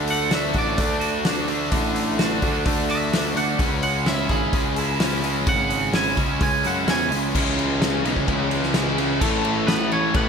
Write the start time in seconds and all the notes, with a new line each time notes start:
Already playing: D2 D3 A3 D4
0.07 A3 F#5, open hi-hat
0.31 D3 A3 D4 F#4, snare, open hi-hat
0.35 E5
0.54 A1 D3 A3 D4, kick, open hi-hat
0.58 D5
0.78 D2 D3 A3 D4, kick, open hi-hat
1.00 F#4, open hi-hat
1.25 D3 A3 D4, snare, open hi-hat
1.48 D3 A3 D4, open hi-hat
1.71 A1 D3 A3 D4, kick, open hi-hat
1.95 A3, open hi-hat
2.19 D3 A3 D4 F#4, snare, open hi-hat
2.42 D2 D3 A3 D4, kick, open hi-hat
2.66 D2 D3 A3 D4, kick, open hi-hat
2.89 F#4 E5, open hi-hat
3.13 D3 A3 D4, snare, open hi-hat
3.34 D2 D3 A3 D4 F#5, open hi-hat
3.59 C#2 C#3 G#3 C#4, kick, open hi-hat
3.83 G#3 F#5, open hi-hat
4.06 C#3 G#3 C#4 E4 E5, snare, open hi-hat
4.29 G#1 C#3 G#3 C#4 G#4, kick, open hi-hat
4.53 C#2 C#3 G#3 C#4, kick, open hi-hat
4.76 E4, open hi-hat
5.00 C#3 G#3 C#4, snare, open hi-hat
5.23 C#3 G#3 C#4, open hi-hat
5.47 G#1 C#3 G#3 C#4 F#5, kick, open hi-hat
5.69 G#3, open hi-hat
5.93 C#3 G#3 C#4 E4 G#5, snare, open hi-hat
6.17 C#2 C#3 G#3 C#4, kick, open hi-hat
6.41 C#2 C#3 G#3 C#4 G#5, kick, open hi-hat
6.64 F#2 E4 F#5, open hi-hat
6.88 E2 C#3 G#3 C#4 G#5, snare, open hi-hat
7.11 C#2 C#3 G#3 C#4, open hi-hat
7.35 C#2 C#3 E3 G#3 C#4 G#4 E5, kick, crash
7.59 ride
7.81 C#3 G#3 C#4, snare, ride
8.05 B1 C#3 G#3 C#4, ride
8.16 C#2, kick
8.27 C#2 C#3 G#3 C#4, kick, ride
8.51 ride
8.63 snare
8.74 C#3 G#3 C#4, snare, ride
8.98 C#3 G#3 C#4, ride
9.21 A1 A2 E3 A3 C#4 E4 A4, kick, crash
9.43 A2 E3 A3, crash
9.67 A2 E3 A3 B3 B4, snare, crash
9.91 A2 E3 A3 C#4 C#5, crash
10.14 A1 A2 E3 A3 B3 B4, kick, crash